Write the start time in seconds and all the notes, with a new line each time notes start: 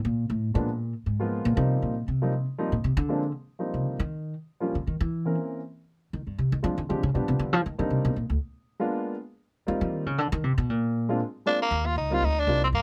0.05 A#2
0.30 A2
0.54 A#2 F3 G#3 A#3 B3 D4
1.06 G#2
1.19 F3 G#3 A#3 B3 F4
1.45 A#2
1.56 C3 F3 G3 A#3 C4 D#4
1.82 A#2
2.08 C3
2.22 F3 G3 A#3 C4 D#4
2.58 F3 G3 A#3 C4 D#4
2.72 A#2
2.84 C3
2.97 D3
3.09 F3 G#3 A#3 C4 D4
3.59 F3 G3 A#3 C4 D#4
3.74 C3
3.86 D3
4.00 D#3
4.60 F3 G3 A#3 C#4 F4
4.75 D3
4.87 D#3
5.01 E3
5.25 E3 A#3 C4 C#4 A#4
6.13 D#3
6.27 G2
6.38 C3
6.52 D#3
6.63 F3 G#3 C4 D4 F4
6.78 D#3
6.89 D3 F3 G#3 C4 D4 G4
7.03 C#3
7.14 B2 F3 G3 B3 D4 G4
7.28 C3
7.39 D3
7.53 F3
7.66 D#3
7.78 D3 G3 A#3 C4 D4 D#4
7.90 C3
8.05 B2
8.16 A#2
8.30 D2
8.80 G#3 A#3 B3 D4 F4
9.67 G3 A#3 C4 D#4 F4
9.81 F3
9.93 D#3
10.06 C#3
10.18 D3
10.32 D#3
10.44 C3
10.58 B2
10.70 A#2
11.09 G#3 A#3 C4 D4 F4
11.46 G#3 A#3 C4 D4 F4
11.62 A#3
11.71 D#2
11.86 F4
11.96 C#2 D#4
12.10 G3 A#3 C4 D#4 F4
12.22 D2 D#4
12.39 D4
12.47 C2 G3 A#3 C4 D#4 F4
12.64 C4
12.73 G2 A#3